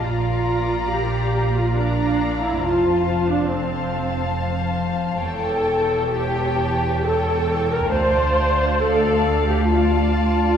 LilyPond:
<<
  \new Staff \with { instrumentName = "Violin section" } { \time 3/4 \key f \major \tempo 4 = 68 bes''2 bes''4 | a''4 a''2 | a''4 a''4 a''4 | a''4 a''4 a''4 | }
  \new Staff \with { instrumentName = "Violin section" } { \time 3/4 \key f \major <d'' f''>2 <d'' f''>4 | <c'' f''>4 <c'' f''>2 | <cis'' g''>4 <cis'' g''>4 <cis'' g''>4 | <d'' f''>4 <d'' f''>4 <d'' f''>4 | }
  \new Staff \with { instrumentName = "Viola section" } { \time 3/4 \key f \major f'4 g'8. f'16 d'8. e'16 | f'8. d'16 c'4 r4 | a'4 g'4 a'8. bes'16 | c''4 a'8. g'16 f'4 | }
  \new Staff \with { instrumentName = "Cello section" } { \clef bass \time 3/4 \key f \major bes,2. | f,2. | e,2. | d,2. | }
  \new Staff \with { instrumentName = "Double bass section" } { \clef bass \time 3/4 \key f \major bes,,2. | f,,2. | e,,2. | d,2. | }
>>